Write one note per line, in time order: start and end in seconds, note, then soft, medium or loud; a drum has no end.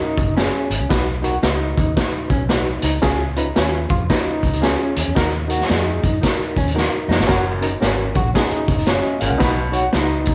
0.00 0.19 C#4 medium
0.00 0.34 D#4 medium
0.00 0.19 F#4 medium
0.00 0.20 A#4 medium
0.00 muted fingered electric bass stroke soft
0.18 0.49 F#1 medium
0.18 kick medium
0.18 closed hi-hat medium
0.37 0.87 C#4 medium
0.37 0.72 C#4 medium
0.37 0.73 F#4 medium
0.37 0.73 G#4 medium
0.37 snare loud
0.37 closed hi-hat medium
0.70 0.79 G#1 medium
0.70 closed hi-hat medium
0.80 0.89 C2 medium
0.89 1.37 B1 loud
0.89 1.08 D#4 medium
0.89 1.09 F#4 medium
0.89 1.09 B4 loud
0.89 kick loud
0.89 snare loud
0.89 closed hi-hat medium
1.22 1.34 D#4 medium
1.22 1.35 F#4 medium
1.22 1.37 F#4 medium
1.22 1.35 A#4 medium
1.22 closed hi-hat medium
1.42 1.72 C#2 loud
1.42 1.78 D#4 medium
1.42 1.93 D#4 medium
1.42 1.79 F#4 medium
1.42 1.79 B4 medium
1.42 snare medium
1.42 closed hi-hat medium
1.77 1.95 D#2 medium
1.77 kick medium
1.77 closed hi-hat medium
1.97 2.32 D#4 medium
1.97 2.32 F#4 medium
1.97 2.33 B4 medium
1.97 kick medium
1.97 snare loud
1.97 closed hi-hat medium
2.13 muted fingered electric bass stroke soft
2.30 2.76 B1 medium
2.30 2.44 C#4 medium
2.30 kick medium
2.30 closed hi-hat medium
2.49 2.85 D#4 medium
2.49 2.85 F#4 medium
2.49 2.85 B4 medium
2.49 snare medium
2.49 closed hi-hat medium
2.82 3.00 C#2 medium
2.82 2.97 D#4 medium
2.82 closed hi-hat medium
3.02 3.49 C#2 medium
3.02 3.21 C#4 loud
3.02 3.26 C#4 medium
3.02 3.21 F4 medium
3.02 3.21 G#4 loud
3.02 kick loud
3.02 snare loud
3.02 closed hi-hat medium
3.36 3.47 C#4 medium
3.36 3.50 D#4 medium
3.36 3.47 F4 medium
3.36 3.48 B4 medium
3.36 closed hi-hat medium
3.56 3.86 D#2 medium
3.56 3.91 C#4 medium
3.56 3.79 C#4 medium
3.56 3.91 F4 medium
3.56 3.92 B4 medium
3.56 snare medium
3.56 closed hi-hat medium
3.89 4.07 F2 medium
3.89 4.03 F4 medium
3.89 kick medium
3.89 closed hi-hat medium
4.10 4.45 C#4 medium
4.10 4.60 D#4 medium
4.10 4.45 F4 medium
4.10 4.45 B4 medium
4.10 kick medium
4.10 snare loud
4.10 closed hi-hat medium
4.26 muted fingered electric bass stroke soft
4.43 4.75 C#2 medium
4.43 kick medium
4.43 closed hi-hat medium
4.53 closed hi-hat soft
4.61 4.97 C#4 medium
4.61 5.13 C#4 medium
4.61 4.98 F4 medium
4.61 4.98 G#4 medium
4.61 snare medium
4.61 closed hi-hat medium
4.96 5.05 D#2 medium
4.96 closed hi-hat medium
5.08 5.16 E2 medium
5.15 5.62 D#2 medium
5.15 5.34 D#4 medium
5.15 5.34 F#4 medium
5.15 5.35 A#4 loud
5.15 kick loud
5.15 snare loud
5.15 closed hi-hat medium
5.48 5.59 D#4 medium
5.48 5.60 F#4 medium
5.48 5.63 F#4 medium
5.48 5.60 A#4 medium
5.48 closed hi-hat medium
5.61 snare soft
5.68 5.99 F2 medium
5.68 6.04 D#4 medium
5.68 6.20 D#4 medium
5.68 6.04 F#4 medium
5.68 6.05 G#4 medium
5.68 snare medium
5.68 closed hi-hat medium
6.03 6.20 F#2 medium
6.03 kick medium
6.03 closed hi-hat medium
6.22 6.57 D#4 medium
6.22 6.58 F#4 medium
6.22 6.58 A#4 medium
6.22 kick medium
6.22 snare medium
6.22 closed hi-hat medium
6.39 muted fingered electric bass stroke soft
6.56 6.88 D#2 medium
6.56 6.70 C#4 medium
6.56 kick medium
6.56 closed hi-hat medium
6.68 closed hi-hat medium
6.74 7.10 D#4 medium
6.74 7.11 F#4 medium
6.74 7.11 A#4 medium
6.74 snare soft
7.08 7.17 F2 medium
7.08 7.22 D#4 medium
7.08 snare medium
7.19 7.27 G1 medium
7.19 snare medium
7.27 7.75 F#1 medium
7.27 7.69 F#2 medium
7.27 7.46 C#4 loud
7.27 7.46 F#4 medium
7.27 7.51 F#4 medium
7.27 7.47 A#4 loud
7.27 kick loud
7.27 snare loud
7.27 closed hi-hat medium
7.61 7.72 C#4 medium
7.61 7.76 D#4 medium
7.61 7.73 F#4 medium
7.61 7.73 A#4 medium
7.61 closed hi-hat medium
7.81 8.11 G#1 medium
7.81 8.16 C#4 medium
7.81 8.04 C#4 medium
7.81 8.17 F#4 medium
7.81 8.17 A#4 medium
7.81 snare medium
7.81 closed hi-hat medium
8.15 8.33 A#1 medium
8.15 8.29 F#4 medium
8.15 kick medium
8.15 closed hi-hat medium
8.34 8.70 C#4 medium
8.34 8.85 D#4 medium
8.34 8.68 F#4 medium
8.34 8.69 G#4 medium
8.34 kick medium
8.34 snare loud
8.34 closed hi-hat medium
8.51 muted fingered electric bass stroke soft
8.51 closed hi-hat soft
8.68 9.00 F#1 medium
8.68 kick medium
8.68 closed hi-hat medium
8.79 closed hi-hat medium
8.87 9.39 C#4 medium
8.87 9.04 F4 soft
8.87 9.04 C#5 medium
8.87 snare medium
8.87 closed hi-hat medium
9.03 9.20 F#4 medium
9.03 9.20 D#5 medium
9.20 9.30 G#1 medium
9.20 9.37 A#2 medium
9.20 9.30 G#4 medium
9.20 9.30 F5 medium
9.20 closed hi-hat medium
9.29 9.40 C2 medium
9.29 9.56 A#4 soft
9.29 9.56 F#5 medium
9.38 9.87 B1 medium
9.38 9.82 B2 medium
9.38 9.58 D#4 loud
9.38 9.59 F#4 medium
9.38 9.59 B4 loud
9.38 kick loud
9.38 snare loud
9.38 closed hi-hat medium
9.72 9.84 D#4 medium
9.72 9.84 F#4 medium
9.72 9.88 F#4 medium
9.72 9.85 C#5 medium
9.72 closed hi-hat medium
9.92 10.23 C#2 medium
9.92 10.29 D#4 medium
9.92 10.35 D#4 medium
9.92 10.29 F#4 medium
9.92 10.29 B4 medium
9.92 snare loud
9.92 closed hi-hat medium
10.25 10.35 D#2 medium
10.25 kick medium
10.25 closed hi-hat medium